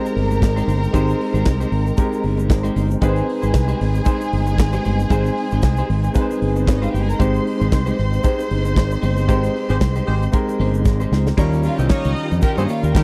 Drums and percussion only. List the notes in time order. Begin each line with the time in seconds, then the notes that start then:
0.06 closed hi-hat, shaker
0.17 open hi-hat
0.30 closed hi-hat, shaker
0.42 kick, snare, clap, shaker
0.57 closed hi-hat, shaker
0.68 open hi-hat, shaker
0.83 closed hi-hat, shaker
0.94 kick, closed hi-hat, shaker
1.07 closed hi-hat, shaker
1.21 open hi-hat
1.35 closed hi-hat, shaker
1.46 kick, snare, clap, shaker
1.61 closed hi-hat, shaker
1.72 open hi-hat
1.86 closed hi-hat, shaker
1.97 kick, closed hi-hat, shaker
2.12 closed hi-hat, shaker
2.23 open hi-hat
2.37 closed hi-hat, shaker
2.50 kick, snare, clap, shaker
2.64 closed hi-hat, shaker
2.76 open hi-hat, shaker
2.91 closed hi-hat, shaker
3.01 kick, closed hi-hat, shaker
3.16 closed hi-hat, shaker
3.29 open hi-hat
3.43 closed hi-hat, shaker
3.54 kick, snare, clap, shaker
3.68 closed hi-hat, shaker
3.81 snare, open hi-hat
3.95 closed hi-hat, shaker
4.05 kick, closed hi-hat, shaker
4.21 closed hi-hat, shaker
4.33 open hi-hat
4.47 closed hi-hat, shaker
4.58 kick, snare, clap, shaker
4.72 closed hi-hat, shaker
4.85 open hi-hat, shaker
4.99 closed hi-hat, shaker
5.10 kick, closed hi-hat, shaker
5.24 closed hi-hat, shaker
5.38 open hi-hat
5.51 closed hi-hat, shaker
5.62 kick, snare, clap, shaker
5.77 closed hi-hat, shaker
5.90 open hi-hat
6.04 closed hi-hat, shaker
6.15 kick, closed hi-hat, shaker
6.31 closed hi-hat, shaker
6.42 open hi-hat
6.56 closed hi-hat, shaker
6.67 kick, snare, clap, shaker
6.83 closed hi-hat, shaker
6.95 open hi-hat, shaker
7.10 closed hi-hat, shaker
7.20 kick, closed hi-hat, shaker
7.34 closed hi-hat, shaker
7.47 open hi-hat
7.61 closed hi-hat, shaker
7.72 kick, snare, clap, shaker
7.86 closed hi-hat, shaker
7.98 snare, open hi-hat
8.13 closed hi-hat, shaker
8.24 kick, closed hi-hat, shaker
8.39 closed hi-hat, shaker
8.51 open hi-hat
8.65 closed hi-hat, shaker
8.76 kick, snare, clap, shaker
8.91 closed hi-hat, shaker
9.03 open hi-hat, shaker
9.17 closed hi-hat, shaker
9.29 kick, closed hi-hat, shaker
9.43 closed hi-hat, shaker
9.57 open hi-hat
9.69 closed hi-hat, shaker
9.81 kick, snare, clap, shaker
9.95 closed hi-hat, shaker
10.08 open hi-hat
10.22 closed hi-hat, shaker
10.33 kick, closed hi-hat, shaker
10.49 closed hi-hat, shaker
10.61 open hi-hat
10.74 closed hi-hat, shaker
10.85 kick, snare, shaker
11.00 shaker
11.13 snare, shaker
11.27 snare, shaker
11.37 kick, crash, shaker
11.52 closed hi-hat, shaker
11.63 open hi-hat, shaker
11.79 closed hi-hat, shaker
11.90 kick, snare, clap, shaker
12.04 closed hi-hat, shaker
12.16 open hi-hat
12.31 closed hi-hat, shaker
12.42 kick, closed hi-hat, shaker
12.58 closed hi-hat, shaker
12.69 open hi-hat, shaker
12.83 closed hi-hat, shaker
12.95 kick, snare, clap, shaker